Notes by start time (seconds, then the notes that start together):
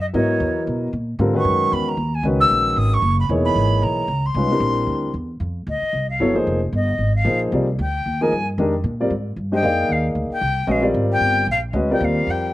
Already playing: F#2
0.01 D#5
0.14 G#2 F#3 B3 E4 A#4 C#5 D#5
0.40 E2
0.67 B2
0.93 A#2
1.19 G#2 D3 G3 C4 F4 A#4
1.34 D#3 G#3 C#4 F#4 B4 C#6
1.45 F#2
1.72 E2 B5
1.88 A#5
1.97 D#2
2.14 G#5
2.23 C#2 D#3 G#3 C#4 F#4 B4
2.40 E6
2.50 A#1
2.76 G#1 D#6
2.94 C#6
3.02 F#1
3.20 B5
3.29 E1 E3 A#3 D#4 G#4 C#5
3.45 B5
3.55 G#1
3.82 B1 A#5
4.08 C#2
4.26 C6
4.34 C2 G#3 C#4 D#4 F4 B4
4.51 G3 C4 D4 E4 A#4
4.60 A#1
4.87 D2
5.14 E2
5.40 F2
5.67 D2 D#5
5.82 muted upright bass stroke
5.93 C2
6.10 F5
6.20 G1 F#3 B3 E4 A4 C#5
6.34 F3 A#3 D#4 G#4 C5
6.47 F1
6.72 G1 D#5
6.98 G#1
7.16 F5
7.25 A#1 F3 A#3 D#4 G#4 C5
7.52 C2 G3 C4 F4 A#4 D5
7.79 D2 G5
8.06 D#2
8.21 F3 A#3 D#4 G#4 A#4 G#5
8.32 G2
8.58 F2 D#3 G#3 D4 G4 A#4
8.84 A#2
9.00 G3 C4 F4 A#4 D5
9.10 G#2
9.36 G2
9.52 G#3 D4 G4 C5 D#5 G5
9.62 F2 A#3 D#4 G#4 D5 F5
9.89 D#2 F5
10.15 D2
10.30 G5, muted upright bass stroke
10.41 C2
10.67 A#1 G#3 C#4 F#4 B4 D#5 F5
10.81 G3 C4 F4 A#4 D5
10.94 G#1
11.12 G5
11.21 G1
11.47 A#1
11.51 F5
11.73 D2 G#3 C#4 F#4 B4 D#5
11.90 G3 C4 F4 A#4 D5 G5
12.00 D#2 F5
12.27 F2 G5